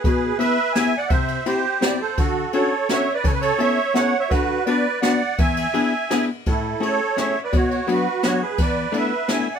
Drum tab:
RD |x-x-x-|xxx-x-|x-x-x-|xxx-x-|
SD |----o-|----o-|----o-|----o-|
BD |o-----|o-----|o-----|o-----|

RD |x-x-x-|xxx-x-|x-x-x-|xxx-x-|
SD |----o-|----o-|----o-|----o-|
BD |o-----|o-----|o-----|o-----|

RD |x-x-x-|
SD |----o-|
BD |o-----|